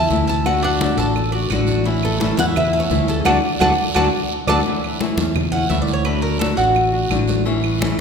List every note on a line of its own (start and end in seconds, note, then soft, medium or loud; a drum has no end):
0.00 0.10 C#4 soft
0.00 0.26 A4 medium
0.00 0.28 A5 loud
0.10 0.92 D2 medium
0.10 0.45 E3 medium
0.10 0.45 A3 medium
0.10 0.45 C#4 medium
0.10 0.45 E4 medium
0.10 high conga medium
0.10 short guiro medium
0.27 0.62 A4 medium
0.27 0.45 A5 loud
0.27 short guiro medium
0.45 0.79 D3 medium
0.45 0.80 A3 medium
0.45 0.80 D4 medium
0.45 0.81 F#4 medium
0.45 0.63 F#5 loud
0.45 high conga soft
0.45 long guiro medium
0.45 claves medium
0.62 0.97 D4 medium
0.62 0.96 F#5 medium
0.62 high conga soft
0.80 0.97 D3 medium
0.80 0.98 A3 medium
0.80 0.98 D4 medium
0.80 0.97 F#4 medium
0.80 high conga loud
0.80 short guiro medium
0.97 1.46 A1 medium
0.97 1.16 A3 soft
0.97 1.15 D4 soft
0.97 1.15 F#4 medium
0.97 1.32 A4 medium
0.97 1.47 A5 medium
0.97 high conga soft
0.97 short guiro medium
1.15 muted nylon-string guitar stroke medium
1.15 high conga soft
1.15 long guiro medium
1.15 claves medium
1.32 1.51 A3 soft
1.32 1.51 D4 soft
1.32 1.50 F#4 medium
1.32 1.49 D5 medium
1.32 high conga soft
1.50 2.32 A1 loud
1.50 1.85 D3 medium
1.50 1.85 A3 medium
1.50 1.86 D4 medium
1.50 1.84 F#4 medium
1.50 1.86 F#4 medium
1.50 high conga medium
1.50 short guiro medium
1.50 claves medium
1.67 high conga medium
1.67 short guiro medium
1.84 2.20 E3 medium
1.84 2.20 A3 medium
1.84 2.20 C#4 medium
1.84 2.19 E4 medium
1.84 2.20 E4 medium
1.84 high conga soft
1.84 long guiro medium
2.03 2.36 A4 medium
2.03 high conga soft
2.03 claves medium
2.20 2.37 E3 medium
2.20 2.37 A3 medium
2.20 2.37 C#4 medium
2.20 2.37 E4 medium
2.20 2.37 A4 medium
2.20 high conga loud
2.20 short guiro medium
2.37 2.87 E2 medium
2.37 2.54 A3 soft
2.37 2.54 C#4 soft
2.37 2.72 E4 medium
2.37 2.54 E4 soft
2.37 2.44 F#5 loud
2.37 high conga loud
2.37 short guiro medium
2.55 2.80 E5 loud
2.55 muted nylon-string guitar stroke medium
2.55 high conga soft
2.55 low conga medium
2.55 long guiro medium
2.55 claves medium
2.73 2.90 A3 soft
2.73 2.90 C#4 soft
2.73 2.90 E4 medium
2.73 3.07 A4 medium
2.73 high conga soft
2.80 3.01 C#5 medium
2.90 3.23 D2 loud
2.90 3.25 E3 medium
2.90 3.25 A3 medium
2.90 3.25 C#4 medium
2.90 3.25 E4 medium
2.90 high conga medium
2.90 short guiro medium
3.08 3.24 A4 medium
3.08 3.25 A4 medium
3.08 short guiro medium
3.25 3.38 D2 medium
3.25 3.37 F#3 loud
3.25 3.37 A3 loud
3.25 3.37 D4 loud
3.25 3.37 F#4 medium
3.25 3.37 A4 medium
3.25 3.37 D5 medium
3.25 3.36 F#5 loud
3.25 3.37 A5 medium
3.25 high conga loud
3.25 long guiro medium
3.25 claves loud
3.60 3.73 D2 loud
3.60 3.72 F#3 loud
3.60 3.72 A3 medium
3.60 3.72 D4 loud
3.60 3.71 F#4 medium
3.60 3.72 A4 medium
3.60 3.71 D5 medium
3.60 3.72 D5 loud
3.60 3.72 F#5 loud
3.60 3.72 A5 loud
3.60 high conga loud
3.60 long guiro medium
3.60 claves loud
3.95 4.08 D2 medium
3.95 4.07 F#3 loud
3.95 4.07 A3 medium
3.95 4.07 D4 loud
3.95 4.06 F#4 loud
3.95 4.06 A4 loud
3.95 4.06 D5 medium
3.95 4.07 D5 medium
3.95 4.07 F#5 loud
3.95 4.07 A5 loud
3.95 high conga loud
3.95 claves medium
4.47 4.61 D2 medium
4.47 4.60 F#3 loud
4.47 4.60 A3 medium
4.47 4.60 D4 medium
4.47 4.59 F#4 medium
4.47 4.59 A4 medium
4.47 4.59 D5 medium
4.47 4.60 D5 loud
4.47 4.60 F#5 medium
4.47 4.60 A5 loud
4.47 high conga medium
4.47 long guiro medium
4.47 claves medium
4.66 5.00 E3 medium
4.66 5.00 A3 medium
4.66 5.00 C#4 medium
4.66 5.01 E4 medium
4.66 high conga soft
4.66 long guiro medium
4.84 high conga soft
4.84 claves medium
5.00 5.17 E3 medium
5.00 5.18 A3 medium
5.00 5.18 C#4 medium
5.00 5.18 E4 medium
5.00 high conga loud
5.00 short guiro medium
5.17 5.66 E2 medium
5.17 5.35 A3 soft
5.17 5.35 C#4 soft
5.17 5.35 E4 soft
5.17 high conga medium
5.17 short guiro medium
5.35 muted nylon-string guitar stroke medium
5.35 high conga soft
5.35 low conga medium
5.35 long guiro medium
5.35 claves medium
5.52 5.70 A3 soft
5.52 5.70 C#4 soft
5.52 5.70 E4 soft
5.52 5.69 F#5 loud
5.52 high conga soft
5.52 low conga medium
5.70 6.52 D2 medium
5.70 6.05 E3 medium
5.70 6.05 A3 medium
5.70 6.05 C#4 medium
5.70 6.05 E4 medium
5.70 5.81 E5 medium
5.70 high conga medium
5.70 short guiro medium
5.82 5.93 D5 medium
5.87 high conga medium
5.87 short guiro medium
5.93 6.05 C#5 medium
6.05 6.39 D3 medium
6.05 6.39 A3 medium
6.05 6.40 D4 medium
6.05 6.40 F#4 medium
6.05 6.22 B4 medium
6.05 high conga soft
6.05 long guiro medium
6.05 claves medium
6.22 6.39 A#4 medium
6.22 high conga soft
6.39 6.57 D3 medium
6.39 6.57 A3 medium
6.39 6.58 D4 medium
6.39 6.57 F#4 medium
6.39 6.57 A4 medium
6.39 high conga loud
6.39 short guiro medium
6.57 7.07 A1 medium
6.57 6.74 A3 soft
6.57 6.74 D4 soft
6.57 7.41 F#4 medium
6.57 6.75 F#4 medium
6.57 high conga soft
6.57 short guiro medium
6.75 muted nylon-string guitar stroke medium
6.75 high conga soft
6.75 long guiro medium
6.75 claves medium
6.92 7.09 A3 soft
6.92 7.09 D4 soft
6.92 7.10 F#4 soft
6.92 high conga soft
7.09 7.92 A1 loud
7.09 7.44 D3 medium
7.09 7.45 A3 medium
7.09 7.45 D4 medium
7.09 7.45 F#4 medium
7.09 high conga medium
7.09 short guiro medium
7.09 claves medium
7.28 high conga medium
7.28 short guiro medium
7.45 7.79 E3 medium
7.45 7.80 A3 medium
7.45 7.80 C#4 medium
7.45 7.80 E4 medium
7.45 high conga soft
7.45 long guiro medium
7.64 high conga soft
7.64 claves medium
7.80 7.97 E3 medium
7.80 7.98 A3 medium
7.80 7.98 C#4 medium
7.80 7.98 E4 medium
7.80 high conga loud
7.80 short guiro medium